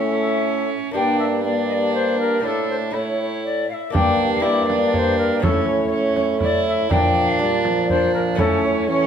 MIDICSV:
0, 0, Header, 1, 7, 480
1, 0, Start_track
1, 0, Tempo, 495458
1, 922, Time_signature, 3, 2, 24, 8
1, 8785, End_track
2, 0, Start_track
2, 0, Title_t, "Recorder"
2, 0, Program_c, 0, 74
2, 0, Note_on_c, 0, 76, 81
2, 189, Note_off_c, 0, 76, 0
2, 206, Note_on_c, 0, 76, 73
2, 674, Note_off_c, 0, 76, 0
2, 932, Note_on_c, 0, 79, 84
2, 1145, Note_off_c, 0, 79, 0
2, 1151, Note_on_c, 0, 76, 73
2, 1209, Note_off_c, 0, 76, 0
2, 1393, Note_on_c, 0, 74, 67
2, 1625, Note_off_c, 0, 74, 0
2, 1631, Note_on_c, 0, 75, 67
2, 1678, Note_on_c, 0, 74, 73
2, 1688, Note_off_c, 0, 75, 0
2, 1870, Note_off_c, 0, 74, 0
2, 1881, Note_on_c, 0, 72, 72
2, 2115, Note_off_c, 0, 72, 0
2, 2131, Note_on_c, 0, 70, 65
2, 2361, Note_off_c, 0, 70, 0
2, 2379, Note_on_c, 0, 69, 65
2, 2606, Note_off_c, 0, 69, 0
2, 2614, Note_on_c, 0, 72, 66
2, 2672, Note_off_c, 0, 72, 0
2, 2870, Note_on_c, 0, 73, 53
2, 3095, Note_off_c, 0, 73, 0
2, 3115, Note_on_c, 0, 73, 72
2, 3328, Note_off_c, 0, 73, 0
2, 3344, Note_on_c, 0, 74, 74
2, 3575, Note_off_c, 0, 74, 0
2, 3583, Note_on_c, 0, 77, 65
2, 3617, Note_on_c, 0, 76, 71
2, 3627, Note_off_c, 0, 77, 0
2, 3814, Note_off_c, 0, 76, 0
2, 3824, Note_on_c, 0, 79, 98
2, 4173, Note_off_c, 0, 79, 0
2, 4193, Note_on_c, 0, 77, 84
2, 4287, Note_off_c, 0, 77, 0
2, 4293, Note_on_c, 0, 74, 90
2, 4783, Note_on_c, 0, 73, 85
2, 4797, Note_off_c, 0, 74, 0
2, 4825, Note_on_c, 0, 72, 93
2, 4834, Note_off_c, 0, 73, 0
2, 5010, Note_off_c, 0, 72, 0
2, 5016, Note_on_c, 0, 70, 79
2, 5246, Note_off_c, 0, 70, 0
2, 5251, Note_on_c, 0, 69, 82
2, 5477, Note_on_c, 0, 73, 91
2, 5492, Note_off_c, 0, 69, 0
2, 5706, Note_off_c, 0, 73, 0
2, 5712, Note_on_c, 0, 73, 91
2, 5956, Note_off_c, 0, 73, 0
2, 5962, Note_on_c, 0, 73, 82
2, 6020, Note_off_c, 0, 73, 0
2, 6231, Note_on_c, 0, 74, 98
2, 6457, Note_off_c, 0, 74, 0
2, 6469, Note_on_c, 0, 76, 90
2, 6684, Note_off_c, 0, 76, 0
2, 6690, Note_on_c, 0, 79, 100
2, 7055, Note_on_c, 0, 77, 71
2, 7070, Note_off_c, 0, 79, 0
2, 7167, Note_off_c, 0, 77, 0
2, 7172, Note_on_c, 0, 74, 87
2, 7635, Note_off_c, 0, 74, 0
2, 7641, Note_on_c, 0, 72, 91
2, 7879, Note_off_c, 0, 72, 0
2, 7886, Note_on_c, 0, 70, 80
2, 7944, Note_off_c, 0, 70, 0
2, 8125, Note_on_c, 0, 69, 86
2, 8361, Note_off_c, 0, 69, 0
2, 8366, Note_on_c, 0, 73, 90
2, 8601, Note_off_c, 0, 73, 0
2, 8619, Note_on_c, 0, 73, 83
2, 8785, Note_off_c, 0, 73, 0
2, 8785, End_track
3, 0, Start_track
3, 0, Title_t, "Violin"
3, 0, Program_c, 1, 40
3, 0, Note_on_c, 1, 61, 62
3, 898, Note_off_c, 1, 61, 0
3, 920, Note_on_c, 1, 62, 58
3, 1366, Note_off_c, 1, 62, 0
3, 1402, Note_on_c, 1, 62, 57
3, 2341, Note_off_c, 1, 62, 0
3, 2366, Note_on_c, 1, 62, 53
3, 2853, Note_on_c, 1, 64, 48
3, 2868, Note_off_c, 1, 62, 0
3, 3624, Note_off_c, 1, 64, 0
3, 3814, Note_on_c, 1, 62, 64
3, 4281, Note_on_c, 1, 64, 64
3, 4295, Note_off_c, 1, 62, 0
3, 4529, Note_off_c, 1, 64, 0
3, 4541, Note_on_c, 1, 62, 64
3, 5244, Note_off_c, 1, 62, 0
3, 5257, Note_on_c, 1, 61, 60
3, 5722, Note_off_c, 1, 61, 0
3, 5728, Note_on_c, 1, 61, 61
3, 6201, Note_off_c, 1, 61, 0
3, 6212, Note_on_c, 1, 64, 62
3, 6699, Note_on_c, 1, 62, 70
3, 6713, Note_off_c, 1, 64, 0
3, 7653, Note_off_c, 1, 62, 0
3, 7670, Note_on_c, 1, 62, 62
3, 8126, Note_on_c, 1, 61, 64
3, 8141, Note_off_c, 1, 62, 0
3, 8606, Note_off_c, 1, 61, 0
3, 8614, Note_on_c, 1, 61, 68
3, 8785, Note_off_c, 1, 61, 0
3, 8785, End_track
4, 0, Start_track
4, 0, Title_t, "Lute"
4, 0, Program_c, 2, 24
4, 0, Note_on_c, 2, 45, 48
4, 0, Note_on_c, 2, 57, 45
4, 0, Note_on_c, 2, 61, 43
4, 0, Note_on_c, 2, 64, 44
4, 870, Note_off_c, 2, 57, 0
4, 877, Note_off_c, 2, 61, 0
4, 884, Note_on_c, 2, 58, 43
4, 885, Note_off_c, 2, 64, 0
4, 891, Note_off_c, 2, 45, 0
4, 904, Note_on_c, 2, 62, 40
4, 915, Note_on_c, 2, 67, 43
4, 922, Note_on_c, 2, 43, 45
4, 2301, Note_off_c, 2, 58, 0
4, 2311, Note_off_c, 2, 62, 0
4, 2317, Note_off_c, 2, 67, 0
4, 2321, Note_off_c, 2, 43, 0
4, 2321, Note_on_c, 2, 57, 37
4, 2330, Note_on_c, 2, 62, 40
4, 2346, Note_on_c, 2, 64, 39
4, 2359, Note_on_c, 2, 45, 44
4, 2803, Note_off_c, 2, 57, 0
4, 2805, Note_off_c, 2, 45, 0
4, 2810, Note_off_c, 2, 62, 0
4, 2812, Note_off_c, 2, 64, 0
4, 2814, Note_on_c, 2, 57, 39
4, 2823, Note_on_c, 2, 64, 40
4, 2849, Note_on_c, 2, 45, 42
4, 3536, Note_off_c, 2, 45, 0
4, 3769, Note_off_c, 2, 57, 0
4, 3774, Note_off_c, 2, 64, 0
4, 3782, Note_on_c, 2, 58, 47
4, 3800, Note_on_c, 2, 62, 48
4, 3810, Note_on_c, 2, 67, 48
4, 3816, Note_on_c, 2, 43, 54
4, 4253, Note_off_c, 2, 58, 0
4, 4265, Note_on_c, 2, 58, 54
4, 4273, Note_off_c, 2, 62, 0
4, 4279, Note_off_c, 2, 67, 0
4, 4283, Note_on_c, 2, 62, 53
4, 4297, Note_on_c, 2, 67, 52
4, 5211, Note_off_c, 2, 58, 0
4, 5218, Note_off_c, 2, 43, 0
4, 5221, Note_off_c, 2, 62, 0
4, 5227, Note_on_c, 2, 57, 48
4, 5228, Note_off_c, 2, 67, 0
4, 5236, Note_on_c, 2, 61, 50
4, 5249, Note_on_c, 2, 64, 48
4, 5257, Note_on_c, 2, 45, 58
4, 6640, Note_off_c, 2, 57, 0
4, 6644, Note_off_c, 2, 61, 0
4, 6651, Note_off_c, 2, 64, 0
4, 6655, Note_off_c, 2, 45, 0
4, 6681, Note_on_c, 2, 62, 48
4, 6710, Note_on_c, 2, 46, 54
4, 7148, Note_off_c, 2, 62, 0
4, 7160, Note_on_c, 2, 62, 53
4, 8090, Note_on_c, 2, 57, 52
4, 8093, Note_off_c, 2, 62, 0
4, 8097, Note_off_c, 2, 46, 0
4, 8100, Note_on_c, 2, 61, 53
4, 8109, Note_on_c, 2, 64, 50
4, 8126, Note_on_c, 2, 45, 60
4, 8785, Note_off_c, 2, 45, 0
4, 8785, Note_off_c, 2, 57, 0
4, 8785, Note_off_c, 2, 61, 0
4, 8785, Note_off_c, 2, 64, 0
4, 8785, End_track
5, 0, Start_track
5, 0, Title_t, "Trombone"
5, 0, Program_c, 3, 57
5, 0, Note_on_c, 3, 57, 64
5, 758, Note_off_c, 3, 57, 0
5, 922, Note_on_c, 3, 58, 54
5, 1367, Note_off_c, 3, 58, 0
5, 1406, Note_on_c, 3, 58, 58
5, 2354, Note_on_c, 3, 57, 54
5, 2369, Note_off_c, 3, 58, 0
5, 2841, Note_off_c, 3, 57, 0
5, 2846, Note_on_c, 3, 57, 50
5, 3558, Note_off_c, 3, 57, 0
5, 3815, Note_on_c, 3, 58, 61
5, 4262, Note_off_c, 3, 58, 0
5, 4293, Note_on_c, 3, 58, 68
5, 5266, Note_on_c, 3, 57, 70
5, 5280, Note_off_c, 3, 58, 0
5, 6687, Note_off_c, 3, 57, 0
5, 6693, Note_on_c, 3, 53, 64
5, 7177, Note_on_c, 3, 55, 71
5, 7191, Note_off_c, 3, 53, 0
5, 7403, Note_off_c, 3, 55, 0
5, 7409, Note_on_c, 3, 53, 67
5, 8131, Note_on_c, 3, 57, 68
5, 8145, Note_off_c, 3, 53, 0
5, 8604, Note_on_c, 3, 52, 71
5, 8618, Note_off_c, 3, 57, 0
5, 8785, Note_off_c, 3, 52, 0
5, 8785, End_track
6, 0, Start_track
6, 0, Title_t, "Bassoon"
6, 0, Program_c, 4, 70
6, 0, Note_on_c, 4, 45, 65
6, 752, Note_off_c, 4, 45, 0
6, 916, Note_on_c, 4, 43, 60
6, 2318, Note_off_c, 4, 43, 0
6, 2360, Note_on_c, 4, 45, 56
6, 2834, Note_off_c, 4, 45, 0
6, 2845, Note_on_c, 4, 45, 53
6, 3558, Note_off_c, 4, 45, 0
6, 3824, Note_on_c, 4, 43, 71
6, 5260, Note_on_c, 4, 45, 69
6, 5275, Note_off_c, 4, 43, 0
6, 6686, Note_off_c, 4, 45, 0
6, 6692, Note_on_c, 4, 46, 70
6, 8098, Note_off_c, 4, 46, 0
6, 8127, Note_on_c, 4, 45, 79
6, 8785, Note_off_c, 4, 45, 0
6, 8785, End_track
7, 0, Start_track
7, 0, Title_t, "Frame drum"
7, 3823, Note_on_c, 9, 64, 75
7, 3920, Note_off_c, 9, 64, 0
7, 4552, Note_on_c, 9, 64, 50
7, 4648, Note_off_c, 9, 64, 0
7, 4785, Note_on_c, 9, 64, 50
7, 4881, Note_off_c, 9, 64, 0
7, 5264, Note_on_c, 9, 64, 78
7, 5361, Note_off_c, 9, 64, 0
7, 5971, Note_on_c, 9, 64, 47
7, 6067, Note_off_c, 9, 64, 0
7, 6204, Note_on_c, 9, 64, 52
7, 6301, Note_off_c, 9, 64, 0
7, 6693, Note_on_c, 9, 64, 75
7, 6790, Note_off_c, 9, 64, 0
7, 7412, Note_on_c, 9, 64, 50
7, 7508, Note_off_c, 9, 64, 0
7, 7651, Note_on_c, 9, 64, 51
7, 7747, Note_off_c, 9, 64, 0
7, 8122, Note_on_c, 9, 64, 74
7, 8219, Note_off_c, 9, 64, 0
7, 8785, End_track
0, 0, End_of_file